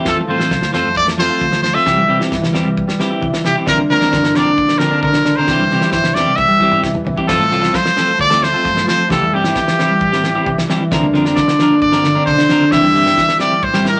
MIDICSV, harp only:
0, 0, Header, 1, 2, 480
1, 0, Start_track
1, 0, Key_signature, -1, "major"
1, 0, Tempo, 452148
1, 67, Time_signature, 4, 2, 24, 8
1, 14861, End_track
2, 0, Start_track
2, 0, Title_t, "Harp"
2, 0, Program_c, 0, 46
2, 0, Note_on_c, 0, 52, 56
2, 0, Note_on_c, 0, 55, 61
2, 0, Note_on_c, 0, 58, 69
2, 0, Note_on_c, 0, 62, 69
2, 0, Note_on_c, 0, 64, 65
2, 53, Note_on_c, 0, 53, 75
2, 116, Note_off_c, 0, 52, 0
2, 116, Note_off_c, 0, 64, 0
2, 120, Note_off_c, 0, 55, 0
2, 168, Note_on_c, 0, 57, 65
2, 232, Note_off_c, 0, 58, 0
2, 275, Note_off_c, 0, 53, 0
2, 288, Note_on_c, 0, 53, 65
2, 410, Note_on_c, 0, 65, 64
2, 511, Note_off_c, 0, 62, 0
2, 515, Note_off_c, 0, 53, 0
2, 527, Note_on_c, 0, 53, 68
2, 626, Note_off_c, 0, 53, 0
2, 639, Note_on_c, 0, 53, 57
2, 879, Note_off_c, 0, 57, 0
2, 884, Note_on_c, 0, 57, 60
2, 1114, Note_off_c, 0, 57, 0
2, 1118, Note_on_c, 0, 57, 65
2, 1234, Note_off_c, 0, 53, 0
2, 1247, Note_on_c, 0, 53, 67
2, 1371, Note_off_c, 0, 65, 0
2, 1375, Note_on_c, 0, 65, 68
2, 1471, Note_off_c, 0, 53, 0
2, 1484, Note_on_c, 0, 53, 75
2, 1596, Note_off_c, 0, 53, 0
2, 1609, Note_on_c, 0, 53, 64
2, 1714, Note_off_c, 0, 53, 0
2, 1727, Note_on_c, 0, 53, 70
2, 1838, Note_off_c, 0, 53, 0
2, 1851, Note_on_c, 0, 53, 55
2, 1976, Note_on_c, 0, 52, 76
2, 2037, Note_off_c, 0, 53, 0
2, 2040, Note_off_c, 0, 65, 0
2, 2081, Note_on_c, 0, 55, 67
2, 2194, Note_off_c, 0, 52, 0
2, 2207, Note_on_c, 0, 52, 61
2, 2325, Note_on_c, 0, 64, 66
2, 2432, Note_off_c, 0, 52, 0
2, 2444, Note_on_c, 0, 52, 72
2, 2549, Note_off_c, 0, 52, 0
2, 2562, Note_on_c, 0, 52, 64
2, 2795, Note_off_c, 0, 55, 0
2, 2807, Note_on_c, 0, 55, 64
2, 3038, Note_off_c, 0, 55, 0
2, 3051, Note_on_c, 0, 55, 67
2, 3157, Note_off_c, 0, 52, 0
2, 3170, Note_on_c, 0, 52, 64
2, 3283, Note_off_c, 0, 64, 0
2, 3288, Note_on_c, 0, 64, 71
2, 3394, Note_off_c, 0, 52, 0
2, 3407, Note_on_c, 0, 52, 75
2, 3521, Note_off_c, 0, 52, 0
2, 3534, Note_on_c, 0, 52, 63
2, 3636, Note_off_c, 0, 52, 0
2, 3649, Note_on_c, 0, 52, 68
2, 3754, Note_off_c, 0, 52, 0
2, 3766, Note_on_c, 0, 52, 58
2, 3883, Note_on_c, 0, 50, 74
2, 3954, Note_off_c, 0, 52, 0
2, 3954, Note_off_c, 0, 55, 0
2, 4007, Note_on_c, 0, 58, 67
2, 4071, Note_off_c, 0, 57, 0
2, 4121, Note_off_c, 0, 50, 0
2, 4134, Note_on_c, 0, 50, 62
2, 4245, Note_on_c, 0, 62, 69
2, 4348, Note_off_c, 0, 50, 0
2, 4361, Note_on_c, 0, 50, 75
2, 4466, Note_off_c, 0, 50, 0
2, 4479, Note_on_c, 0, 50, 60
2, 4719, Note_off_c, 0, 58, 0
2, 4723, Note_on_c, 0, 58, 62
2, 4968, Note_off_c, 0, 58, 0
2, 4973, Note_on_c, 0, 58, 65
2, 5091, Note_off_c, 0, 50, 0
2, 5104, Note_on_c, 0, 50, 66
2, 5205, Note_off_c, 0, 62, 0
2, 5209, Note_on_c, 0, 62, 74
2, 5327, Note_off_c, 0, 50, 0
2, 5340, Note_on_c, 0, 50, 76
2, 5441, Note_off_c, 0, 50, 0
2, 5454, Note_on_c, 0, 50, 65
2, 5562, Note_off_c, 0, 50, 0
2, 5575, Note_on_c, 0, 50, 69
2, 5689, Note_off_c, 0, 50, 0
2, 5702, Note_on_c, 0, 50, 57
2, 5811, Note_on_c, 0, 52, 78
2, 5871, Note_off_c, 0, 50, 0
2, 5934, Note_on_c, 0, 55, 68
2, 6045, Note_off_c, 0, 52, 0
2, 6058, Note_on_c, 0, 52, 70
2, 6060, Note_off_c, 0, 64, 0
2, 6175, Note_on_c, 0, 64, 65
2, 6278, Note_off_c, 0, 52, 0
2, 6291, Note_on_c, 0, 52, 77
2, 6394, Note_off_c, 0, 52, 0
2, 6406, Note_on_c, 0, 52, 58
2, 6634, Note_off_c, 0, 55, 0
2, 6647, Note_on_c, 0, 55, 70
2, 6869, Note_off_c, 0, 55, 0
2, 6882, Note_on_c, 0, 55, 70
2, 6983, Note_off_c, 0, 52, 0
2, 6996, Note_on_c, 0, 52, 70
2, 7116, Note_off_c, 0, 64, 0
2, 7120, Note_on_c, 0, 64, 74
2, 7232, Note_off_c, 0, 52, 0
2, 7244, Note_on_c, 0, 52, 76
2, 7348, Note_off_c, 0, 52, 0
2, 7360, Note_on_c, 0, 52, 59
2, 7466, Note_off_c, 0, 52, 0
2, 7479, Note_on_c, 0, 52, 66
2, 7589, Note_off_c, 0, 52, 0
2, 7601, Note_on_c, 0, 52, 59
2, 7724, Note_on_c, 0, 53, 83
2, 7787, Note_off_c, 0, 64, 0
2, 7789, Note_off_c, 0, 52, 0
2, 7789, Note_off_c, 0, 55, 0
2, 7847, Note_on_c, 0, 57, 61
2, 7911, Note_off_c, 0, 58, 0
2, 7947, Note_off_c, 0, 53, 0
2, 7959, Note_on_c, 0, 53, 67
2, 8081, Note_on_c, 0, 65, 69
2, 8181, Note_off_c, 0, 62, 0
2, 8191, Note_off_c, 0, 53, 0
2, 8204, Note_on_c, 0, 53, 72
2, 8314, Note_off_c, 0, 53, 0
2, 8327, Note_on_c, 0, 53, 57
2, 8567, Note_off_c, 0, 57, 0
2, 8571, Note_on_c, 0, 57, 63
2, 8799, Note_off_c, 0, 57, 0
2, 8804, Note_on_c, 0, 57, 67
2, 9040, Note_off_c, 0, 65, 0
2, 9044, Note_on_c, 0, 65, 67
2, 9151, Note_off_c, 0, 53, 0
2, 9164, Note_on_c, 0, 53, 73
2, 9264, Note_off_c, 0, 53, 0
2, 9276, Note_on_c, 0, 53, 60
2, 9386, Note_off_c, 0, 53, 0
2, 9399, Note_on_c, 0, 53, 70
2, 9509, Note_off_c, 0, 53, 0
2, 9522, Note_on_c, 0, 53, 59
2, 9641, Note_on_c, 0, 52, 81
2, 9705, Note_off_c, 0, 65, 0
2, 9709, Note_off_c, 0, 53, 0
2, 9769, Note_on_c, 0, 55, 66
2, 9882, Note_off_c, 0, 52, 0
2, 9895, Note_on_c, 0, 52, 70
2, 10014, Note_on_c, 0, 64, 67
2, 10133, Note_off_c, 0, 52, 0
2, 10146, Note_on_c, 0, 52, 69
2, 10251, Note_off_c, 0, 52, 0
2, 10263, Note_on_c, 0, 52, 62
2, 10488, Note_off_c, 0, 55, 0
2, 10501, Note_on_c, 0, 55, 60
2, 10738, Note_off_c, 0, 55, 0
2, 10751, Note_on_c, 0, 55, 68
2, 10845, Note_off_c, 0, 52, 0
2, 10858, Note_on_c, 0, 52, 64
2, 10979, Note_off_c, 0, 64, 0
2, 10983, Note_on_c, 0, 64, 69
2, 11097, Note_off_c, 0, 52, 0
2, 11110, Note_on_c, 0, 52, 78
2, 11219, Note_off_c, 0, 52, 0
2, 11232, Note_on_c, 0, 52, 62
2, 11339, Note_off_c, 0, 52, 0
2, 11351, Note_on_c, 0, 52, 68
2, 11453, Note_off_c, 0, 52, 0
2, 11465, Note_on_c, 0, 52, 63
2, 11582, Note_on_c, 0, 50, 84
2, 11631, Note_off_c, 0, 52, 0
2, 11631, Note_off_c, 0, 55, 0
2, 11698, Note_on_c, 0, 58, 69
2, 11762, Note_off_c, 0, 57, 0
2, 11802, Note_off_c, 0, 50, 0
2, 11815, Note_on_c, 0, 50, 72
2, 11938, Note_on_c, 0, 62, 70
2, 12044, Note_off_c, 0, 50, 0
2, 12057, Note_on_c, 0, 50, 75
2, 12166, Note_off_c, 0, 50, 0
2, 12179, Note_on_c, 0, 50, 67
2, 12413, Note_off_c, 0, 58, 0
2, 12418, Note_on_c, 0, 58, 64
2, 12655, Note_off_c, 0, 58, 0
2, 12660, Note_on_c, 0, 58, 67
2, 12769, Note_off_c, 0, 50, 0
2, 12782, Note_on_c, 0, 50, 67
2, 12903, Note_off_c, 0, 62, 0
2, 12907, Note_on_c, 0, 62, 76
2, 13018, Note_off_c, 0, 50, 0
2, 13030, Note_on_c, 0, 50, 78
2, 13128, Note_off_c, 0, 50, 0
2, 13141, Note_on_c, 0, 50, 64
2, 13246, Note_off_c, 0, 50, 0
2, 13259, Note_on_c, 0, 50, 70
2, 13358, Note_off_c, 0, 50, 0
2, 13371, Note_on_c, 0, 50, 59
2, 13492, Note_on_c, 0, 52, 83
2, 13554, Note_off_c, 0, 50, 0
2, 13622, Note_on_c, 0, 55, 68
2, 13733, Note_off_c, 0, 52, 0
2, 13746, Note_on_c, 0, 52, 65
2, 13756, Note_off_c, 0, 64, 0
2, 13864, Note_on_c, 0, 64, 67
2, 13966, Note_off_c, 0, 52, 0
2, 13979, Note_on_c, 0, 52, 76
2, 14091, Note_off_c, 0, 52, 0
2, 14104, Note_on_c, 0, 52, 61
2, 14328, Note_off_c, 0, 55, 0
2, 14341, Note_on_c, 0, 55, 68
2, 14563, Note_off_c, 0, 55, 0
2, 14576, Note_on_c, 0, 55, 65
2, 14681, Note_off_c, 0, 52, 0
2, 14694, Note_on_c, 0, 52, 62
2, 14814, Note_off_c, 0, 64, 0
2, 14818, Note_on_c, 0, 64, 70
2, 14861, Note_off_c, 0, 52, 0
2, 14861, Note_off_c, 0, 55, 0
2, 14861, Note_off_c, 0, 58, 0
2, 14861, Note_off_c, 0, 62, 0
2, 14861, Note_off_c, 0, 64, 0
2, 14861, End_track
0, 0, End_of_file